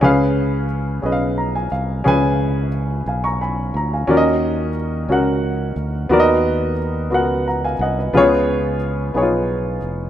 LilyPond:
<<
  \new Staff \with { instrumentName = "Grand piano" } { \time 6/8 \key cis \mixolydian \tempo 4. = 59 << { r2 ais''16 gis''16 eis''8 | r4. <eis'' gis''>16 <ais'' cis'''>16 <gis'' b''>8 ais''16 <eis'' gis''>16~ | <eis'' gis''>16 r2 r8. | r2 <fis'' ais''>16 <eis'' gis''>16 <dis'' fis''>16 <b' dis''>16~ |
<b' dis''>16 r2 r8. | } \\ { <cis' gis' b' eis''>4 r8 <cis' gis' b' dis'' eis''>4 r8 | <cis' gis' b' gis''>4 r2 | <cis' fis' ais' d'' dis''>4 r8 <cis' fis' ais' fis''>4 r8 | <b fis' ais' d'' dis''>4 r8 <b fis' ais' fis''>4 r8 |
<b eis' gis' cis''>4 r8 <b dis' eis' gis' cis''>4 r8 | } >> }
  \new Staff \with { instrumentName = "Grand piano" } { \clef bass \time 6/8 \key cis \mixolydian cis4. r4. | cis4. r4. | dis4. r4. | dis4. r4. |
cis4. r4. | }
  \new Staff \with { instrumentName = "Fingered electric bass" } { \clef bass \time 6/8 \key cis \mixolydian cis,4. b,,4 bis,,8 | cis,4. b,,4 d,8 | dis,4. cis,4 d,8 | dis,4. cis,4 bis,,8 |
cis,4. b,,4 eis,,8 | }
>>